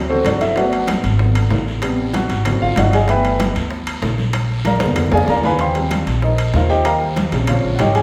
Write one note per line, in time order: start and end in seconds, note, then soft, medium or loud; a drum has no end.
0.00 0.22 D2 medium
0.00 0.38 E3 soft
0.00 0.39 F#3 soft
0.10 0.25 C4 medium
0.10 0.25 F#4 medium
0.10 0.25 A4 medium
0.10 0.25 C5 medium
0.10 high conga soft
0.24 0.98 G1 medium
0.24 0.41 D4 medium
0.24 0.41 F#4 medium
0.24 0.41 A4 medium
0.24 0.41 D5 medium
0.24 high bongo medium
0.24 low bongo medium
0.24 high conga medium
0.24 high timbale medium
0.24 low timbale medium
0.24 short guiro medium
0.40 0.57 E4 medium
0.40 0.56 E5 medium
0.40 high bongo soft
0.40 high conga medium
0.40 high timbale medium
0.40 short guiro medium
0.56 1.01 F#3 medium
0.56 1.02 A3 soft
0.56 1.02 B3 medium
0.56 0.87 F#4 medium
0.56 0.87 B4 medium
0.56 0.87 D5 medium
0.56 0.86 F#5 medium
0.56 high bongo medium
0.56 high conga soft
0.56 high timbale medium
0.56 long guiro medium
0.72 high conga soft
0.72 high timbale medium
0.87 high bongo medium
0.87 high conga loud
0.87 high timbale medium
0.87 low timbale medium
0.87 short guiro medium
1.04 1.48 G#1 medium
1.04 high conga soft
1.04 high timbale medium
1.04 short guiro medium
1.19 1.79 D3 soft
1.19 1.79 F3 soft
1.19 1.80 B3 medium
1.19 high bongo medium
1.19 high conga soft
1.19 long guiro medium
1.35 high conga soft
1.35 high timbale medium
1.50 2.24 A1 medium
1.50 high bongo medium
1.50 low bongo medium
1.50 high conga soft
1.50 low timbale medium
1.50 short guiro medium
1.67 short guiro medium
1.82 2.27 C3 medium
1.82 2.28 G3 medium
1.82 2.28 B3 medium
1.82 high bongo medium
1.82 high conga soft
1.82 high timbale medium
1.82 long guiro medium
1.98 high bongo soft
1.98 high conga soft
2.13 2.59 F#4 medium
2.13 2.58 F#5 medium
2.13 high bongo medium
2.13 high conga loud
2.13 high timbale medium
2.13 low timbale medium
2.13 short guiro medium
2.29 2.59 G#1 medium
2.29 high bongo soft
2.29 high timbale medium
2.29 short guiro medium
2.45 2.91 D3 soft
2.45 2.91 F#3 soft
2.45 2.91 C4 medium
2.45 high bongo medium
2.45 high conga soft
2.45 low conga medium
2.45 high timbale medium
2.61 2.76 G#1 medium
2.61 2.77 F4 medium
2.61 2.77 F5 loud
2.61 high conga soft
2.76 3.50 G1 loud
2.76 2.93 F#4 medium
2.76 2.93 D5 medium
2.76 2.93 D#5 medium
2.76 2.93 F#5 medium
2.76 high bongo medium
2.76 low bongo medium
2.76 high conga medium
2.76 high timbale loud
2.76 low timbale medium
2.76 short guiro medium
2.93 3.09 G#4 medium
2.93 3.09 D5 medium
2.93 3.09 D#5 medium
2.93 3.09 G#5 medium
2.93 high bongo soft
2.93 high conga medium
2.93 high timbale medium
2.93 short guiro medium
3.08 4.30 E3 medium
3.08 4.31 A3 medium
3.08 4.31 B3 medium
3.08 3.39 B4 medium
3.08 3.39 E5 medium
3.08 3.39 G5 medium
3.08 3.38 B5 loud
3.08 high bongo medium
3.08 high conga soft
3.08 high timbale medium
3.08 long guiro medium
3.24 high conga soft
3.24 high timbale medium
3.40 high bongo medium
3.40 high conga loud
3.40 high timbale medium
3.40 low timbale medium
3.40 short guiro medium
3.55 3.99 D2 medium
3.55 high conga soft
3.55 high timbale medium
3.55 short guiro medium
3.71 high bongo medium
3.71 high conga soft
3.71 long guiro medium
3.87 high conga soft
3.87 high timbale medium
4.02 4.75 A#1 medium
4.02 high bongo medium
4.02 low bongo medium
4.02 high conga soft
4.02 low timbale medium
4.02 short guiro medium
4.18 high conga medium
4.18 short guiro medium
4.33 high bongo medium
4.33 high conga soft
4.33 high timbale medium
4.33 long guiro medium
4.49 high bongo soft
4.49 high conga soft
4.65 5.10 A#4 medium
4.65 5.10 D5 medium
4.65 5.10 F5 medium
4.65 5.10 A#5 medium
4.65 high bongo medium
4.65 high conga medium
4.65 high timbale medium
4.65 low timbale medium
4.65 short guiro medium
4.76 high conga medium
4.80 5.10 F2 medium
4.80 5.27 D3 medium
4.80 5.27 G#3 medium
4.80 5.27 B3 medium
4.80 high bongo loud
4.80 high timbale medium
4.80 short guiro medium
4.86 low conga medium
4.96 high bongo medium
4.96 low conga medium
4.96 high timbale loud
4.96 long guiro medium
5.07 low conga medium
5.12 5.27 F2 medium
5.12 5.28 G#4 medium
5.12 5.29 D5 medium
5.12 5.29 F5 medium
5.12 5.28 G#5 medium
5.12 high bongo medium
5.12 high timbale medium
5.17 low conga medium
5.23 high timbale medium
5.28 6.01 D#2 medium
5.28 5.45 A#4 medium
5.28 5.45 D5 medium
5.28 5.44 F5 medium
5.28 5.44 A#5 medium
5.28 low bongo medium
5.28 short guiro medium
5.38 low conga medium
5.43 5.60 B4 medium
5.43 5.60 F5 medium
5.43 5.60 G#5 medium
5.43 5.60 B5 loud
5.43 low bongo medium
5.43 low timbale medium
5.43 short guiro medium
5.49 low conga medium
5.59 5.90 C5 medium
5.59 5.90 F5 medium
5.59 5.90 G5 medium
5.59 5.90 C6 medium
5.59 high bongo medium
5.59 high conga soft
5.59 high timbale medium
5.59 long guiro medium
5.75 6.20 F3 medium
5.75 6.20 G3 medium
5.75 6.21 C4 medium
5.75 high conga soft
5.75 high timbale medium
5.91 high bongo medium
5.91 high conga medium
5.91 high timbale medium
5.91 low timbale medium
5.91 short guiro medium
6.07 6.51 A#1 medium
6.07 high conga soft
6.07 high timbale medium
6.07 short guiro medium
6.22 6.53 D#4 medium
6.22 6.53 A#4 medium
6.22 6.53 C5 soft
6.22 6.52 D#5 medium
6.22 high bongo medium
6.22 high conga soft
6.22 long guiro medium
6.38 high conga soft
6.38 high timbale medium
6.54 7.27 D#2 medium
6.54 6.70 F4 medium
6.54 6.70 A#4 medium
6.54 6.68 C5 medium
6.54 6.70 F5 medium
6.54 high bongo medium
6.54 low bongo medium
6.54 high conga soft
6.54 low timbale medium
6.54 short guiro medium
6.69 6.85 G4 medium
6.69 6.85 C5 medium
6.69 6.85 D#5 medium
6.69 6.85 G5 loud
6.69 short guiro medium
6.85 7.01 A#4 medium
6.85 7.01 F5 medium
6.85 7.01 G5 medium
6.85 7.01 A#5 loud
6.85 high bongo medium
6.85 high conga soft
6.85 high timbale medium
6.85 long guiro medium
7.01 high bongo soft
7.01 high conga soft
7.16 high bongo medium
7.16 high conga medium
7.16 high timbale medium
7.16 low timbale medium
7.16 short guiro medium
7.32 7.62 A#1 loud
7.32 7.78 C3 medium
7.32 7.77 C#3 medium
7.32 7.78 F3 medium
7.32 7.78 G3 soft
7.32 high bongo soft
7.32 high timbale medium
7.32 short guiro medium
7.47 7.78 F4 medium
7.47 7.78 C5 medium
7.47 7.78 C#5 medium
7.47 7.78 F5 medium
7.47 high bongo medium
7.47 high conga soft
7.47 low conga medium
7.47 high timbale medium
7.47 long guiro medium
7.64 7.79 A#1 medium
7.64 high conga soft
7.75 7.78 F#5 medium
7.75 high timbale medium
7.75 low timbale medium
7.79 8.02 G#1 medium
7.79 7.96 G4 medium
7.79 7.95 C#5 medium
7.79 7.95 D#5 medium
7.79 7.95 G5 medium
7.79 high bongo medium
7.79 low bongo medium
7.79 high conga medium
7.79 short guiro medium
7.95 8.02 G#4 medium
7.95 8.02 G#5 medium
7.95 high bongo soft
7.95 high conga medium
7.95 high timbale medium
7.95 short guiro medium